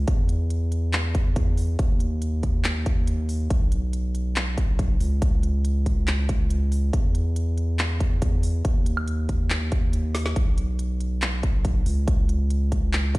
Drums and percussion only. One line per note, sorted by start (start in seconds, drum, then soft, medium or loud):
0.07 kick loud
0.07 closed hi-hat medium
0.29 closed hi-hat medium
0.50 closed hi-hat medium
0.72 closed hi-hat medium
0.93 clap loud
0.93 closed hi-hat medium
1.15 kick loud
1.15 closed hi-hat medium
1.36 kick loud
1.36 closed hi-hat medium
1.57 open hi-hat medium
1.79 kick loud
1.79 closed hi-hat medium
2.00 closed hi-hat medium
2.22 closed hi-hat medium
2.43 kick medium
2.43 closed hi-hat medium
2.64 clap loud
2.64 closed hi-hat medium
2.86 kick loud
2.86 closed hi-hat medium
3.07 closed hi-hat medium
3.29 open hi-hat medium
3.50 kick loud
3.50 closed hi-hat medium
3.72 closed hi-hat medium
3.93 closed hi-hat medium
4.15 closed hi-hat medium
4.36 clap loud
4.36 closed hi-hat medium
4.58 kick loud
4.58 closed hi-hat medium
4.79 kick loud
4.79 closed hi-hat medium
5.00 open hi-hat medium
5.22 kick loud
5.22 closed hi-hat medium
5.43 closed hi-hat medium
5.65 closed hi-hat medium
5.86 kick medium
5.86 closed hi-hat medium
6.08 clap loud
6.08 closed hi-hat medium
6.29 kick loud
6.29 closed hi-hat medium
6.50 closed hi-hat medium
6.72 open hi-hat loud
6.93 kick loud
6.93 closed hi-hat medium
7.15 closed hi-hat medium
7.36 closed hi-hat medium
7.58 closed hi-hat medium
7.79 clap loud
7.79 closed hi-hat medium
8.00 kick loud
8.00 closed hi-hat medium
8.22 kick loud
8.22 closed hi-hat medium
8.43 open hi-hat loud
8.65 kick loud
8.65 closed hi-hat medium
8.86 closed hi-hat medium
8.97 high woodblock medium
9.08 closed hi-hat medium
9.29 kick medium
9.29 closed hi-hat medium
9.50 clap loud
9.50 closed hi-hat medium
9.72 kick loud
9.72 closed hi-hat medium
9.93 closed hi-hat medium
10.15 snare medium
10.15 open hi-hat loud
10.26 snare medium
10.36 kick loud
10.36 closed hi-hat medium
10.58 closed hi-hat medium
10.79 closed hi-hat medium
11.00 closed hi-hat medium
11.22 clap loud
11.22 closed hi-hat medium
11.43 kick loud
11.43 closed hi-hat medium
11.65 kick loud
11.65 closed hi-hat medium
11.86 open hi-hat medium
12.08 kick loud
12.08 closed hi-hat medium
12.29 closed hi-hat medium
12.50 closed hi-hat medium
12.72 kick medium
12.72 closed hi-hat medium
12.93 clap loud
12.93 closed hi-hat medium
13.15 kick loud
13.15 closed hi-hat medium